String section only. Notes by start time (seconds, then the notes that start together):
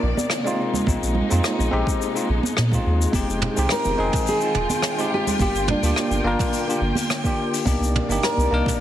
Already playing: C3 D#3 A#3 D5
0.60 G#3 D#4
3.13 D#3 F4 G5
5.40 D3 A#3
7.66 C3 D#3 A#3 D5